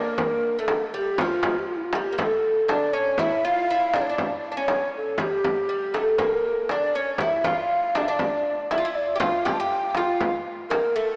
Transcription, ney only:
Already playing: A#4
0.59 A4
0.97 G4
1.20 F4
1.59 G4
1.67 F4
1.76 E4
1.84 F4
1.96 G4
2.19 A4
2.71 D5
2.94 C#5
3.20 E5
3.45 F5
3.94 D5
4.01 C#5
4.07 D5
4.59 C#5
4.96 A4
5.20 G4
5.95 A4
6.22 A#4
6.70 D5
6.96 C#5
7.20 E5
7.46 F5
7.97 D5
8.03 E5
8.11 D5
8.73 E5
8.96 D5
9.21 F5
9.45 G5
9.53 A5
9.60 G5
9.90 G5
9.96 F5
10.70 A#4
10.96 A4

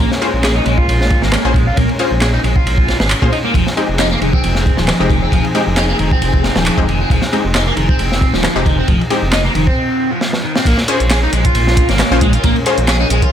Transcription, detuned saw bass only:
0.34 A#1
0.66 A#1
0.88 A#1
1.23 G#1
1.45 A#1
1.78 A#1
2.11 A#1
2.44 A#1
2.66 A#1
3.00 G#1
3.22 A#2
3.54 F1
3.89 F1
4.22 F1
4.44 F1
4.78 D#1
5.00 F1
5.32 F1
5.67 F1
6.00 F1
6.22 F1
6.56 D#1
6.78 F1
7.10 F1
7.45 F1
7.77 F1
7.99 F1
8.34 D#1
8.56 F1
8.88 F1
9.22 F1
9.55 F1
10.65 A#1
11.00 A#1
11.33 A#1
11.55 A#1
11.89 G#1
12.11 A#1
12.44 A#1
12.78 A#1
13.10 A#1

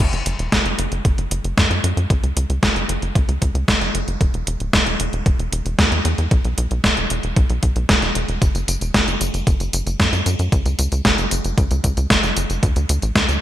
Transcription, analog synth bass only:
0.13 F#1
0.26 F#1
0.39 E1
0.52 F#1
0.65 F#1
0.79 F#1
0.92 F#1
1.05 F#1
1.18 F#1
1.31 F#1
1.44 F#1
1.58 F#2
1.71 F#2
1.84 F#2
1.97 F#2
2.10 C#2
2.23 C#2
2.36 C#2
2.50 C#2
2.63 F#1
2.76 F#1
2.89 F#1
3.02 F#1
3.15 C#2
3.28 C#2
3.42 C#2
3.55 C#2
3.68 F#1
3.81 F#1
3.94 F#1
4.07 F#1
4.21 E1
4.34 E1
4.47 E1
4.60 D1
4.73 E1
4.87 E1
5.00 E1
5.13 E1
5.26 E1
5.39 E1
5.52 E1
5.65 E1
5.79 E2
5.92 E2
6.05 E2
6.18 E2
6.31 B1
6.45 B1
6.58 B1
6.71 B1
6.84 E1
6.97 E1
7.10 E1
7.24 E1
7.36 B1
7.50 B1
7.63 B1
7.76 B1
7.89 E1
8.02 E1
8.15 E1
8.28 E1
8.42 F#1
8.55 F#1
8.68 F#1
8.81 E1
8.94 F#1
9.07 F#1
9.21 F#1
9.34 F#1
9.47 F#1
9.60 F#1
9.73 F#1
9.86 F#1
10.00 F#2
10.13 F#2
10.26 F#2
10.39 F#2
10.52 C#2
10.65 C#2
10.79 C#2
10.92 C#2
11.05 F#1
11.18 F#1
11.31 F#1
11.45 F#1
11.58 C#2
11.71 C#2
11.84 C#2
11.97 C#2
12.10 F#1
12.23 F#1
12.37 F#1
12.50 F#1
12.63 D2
12.76 D2
12.89 D2
13.02 A1
13.16 D2
13.29 D2

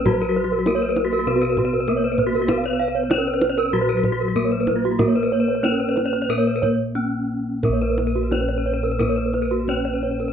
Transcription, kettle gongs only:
Already playing: A#1
0.06 F#4
0.66 B3
1.27 B2
1.87 B3
2.47 B4
3.09 B3
3.73 A#2
4.35 B3
4.99 A#4
5.63 B3
6.29 A#2
6.97 B3
7.63 A#4
7.69 A#1
8.32 B3
9.68 B3

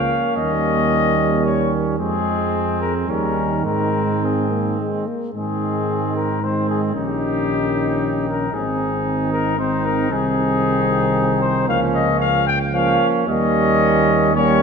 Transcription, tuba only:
Already playing: C#2
0.37 D#2
1.99 F2
3.08 D#2
3.65 G#2
5.35 G#2
6.95 A#1
8.53 G#1
10.11 C2
11.69 C#2
13.28 D#2

